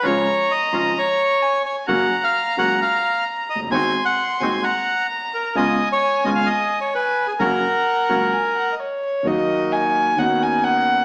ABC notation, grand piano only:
X:1
M:4/4
L:1/16
Q:1/4=130
K:F#
V:1 name="Grand piano" clef=bass
[C,,C,E,G,E]2 z4 [G,,,G,,C,E,G,E]2 z8 | [F,,C,F,A,F]2 z4 [C,,C,F,A,F]2 z6 z/2 E,,,/2 F,,,/2 =G,,,/2 | [G,,,G,,D,G,^B,F]2 z4 [D,,,D,,D,G,B,F]2 z8 | [C,,C,G,B,E]2 z4 [G,,,G,,C,G,B,E]2 z8 |
[F,,C,F,A,F]2 z4 [C,,C,F,A,F]2 z8 | [K:Ebm] [E,,E,G,B,G]8 [^D,,^D,=B,^C^F]8 |]